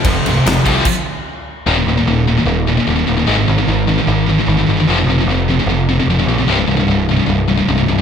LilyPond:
<<
  \new Staff \with { instrumentName = "Distorted electric guitar" } { \clef bass \time 4/4 \key f \dorian \tempo 4 = 149 <f, c f>2 r2 | r1 | r1 | r1 |
r1 | }
  \new Staff \with { instrumentName = "Distorted electric guitar" } { \clef bass \time 4/4 \key f \dorian <f, c>8 <f, c>8 <f, c>8 <f, c f>8 r2 | <ees, bes, ees>16 <ees, bes,>16 <ees, bes,>16 <ees, bes,>16 <ees, bes,>8 <ees, bes,>16 <ees, bes,>16 <ees, bes,>8 <ees, bes,>16 <ees, bes,>16 <ees, bes,>16 <ees, bes,>16 <ees, bes,>16 <ees, bes,>16 | <aes, ees aes>16 <aes, ees>16 <aes, ees>16 <aes, ees>16 <aes, ees>8 <aes, ees>16 <aes, ees>16 <aes, ees>8 <aes, ees>16 <aes, ees>16 <aes, ees>16 <aes, ees>16 <aes, ees>16 <aes, ees>16 | <f, c f>16 <f, c>16 <f, c>16 <f, c>16 <f, c>8 <f, c>16 <f, c>16 <f, c>8 <f, c>16 <f, c>16 <f, c>16 <f, c>16 <f, c>16 <f, c>16 |
<c, g, c>16 <c, g,>16 <c, g,>16 <c, g,>16 <c, g,>8 <c, g,>16 <c, g,>16 <c, g,>8 <c, g,>16 <c, g,>16 <c, g,>16 <c, g,>16 <c, g,>16 <c, g,>16 | }
  \new Staff \with { instrumentName = "Distorted electric guitar" } { \clef bass \time 4/4 \key f \dorian <f, c>8 <f, c>8 <f, c>8 <f, c f>8 r2 | <ees, bes, ees>16 <ees, bes,>16 <ees, bes,>16 <ees, bes,>16 <ees, bes,>8 <ees, bes,>16 <ees, bes,>16 <ees, bes,>8 <ees, bes,>16 <ees, bes,>16 <ees, bes,>16 <ees, bes,>16 <ees, bes,>16 <ees, bes,>16 | <aes, ees aes>16 <aes, ees>16 <aes, ees>16 <aes, ees>16 <aes, ees>8 <aes, ees>16 <aes, ees>16 <aes, ees>8 <aes, ees>16 <aes, ees>16 <aes, ees>16 <aes, ees>16 <aes, ees>16 <aes, ees>16 | <f, c f>16 <f, c>16 <f, c>16 <f, c>16 <f, c>8 <f, c>16 <f, c>16 <f, c>8 <f, c>16 <f, c>16 <f, c>16 <f, c>16 <f, c>16 <f, c>16 |
<c, g, c>16 <c, g,>16 <c, g,>16 <c, g,>16 <c, g,>8 <c, g,>16 <c, g,>16 <c, g,>8 <c, g,>16 <c, g,>16 <c, g,>16 <c, g,>16 <c, g,>16 g,16 | }
  \new Staff \with { instrumentName = "Picked electric bass" } { \clef bass \time 4/4 \key f \dorian f,,8 c,,8 f,,8 c,8 r2 | ees,,8 ees,,8 ees,,4 ees,,4 ees,,8 ees,,8 | aes,,8 aes,,8 aes,,4 aes,,4 aes,,8 g,,8 | f,,8 f,,8 f,,4 f,,4 f,,8 bes,,8 |
c,,8 c,,8 c,,4 c,,4 c,,8 c,,8 | }
  \new DrumStaff \with { instrumentName = "Drums" } \drummode { \time 4/4 <cymc bd>8 cymc8 <cymc sn>8 <cymc bd>8 <cymc bd>4 r4 | r4 r4 r4 r4 | r4 r4 r4 r4 | r4 r4 r4 r4 |
r4 r4 r4 r4 | }
>>